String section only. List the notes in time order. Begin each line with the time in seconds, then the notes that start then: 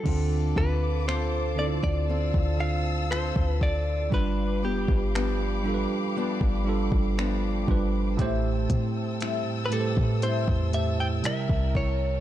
0.06 A4 F5 A5 D6
2.09 E6
4.12 G4 F5 B5 D6
8.19 A4 G5 A5 E6
11.24 A#4 G5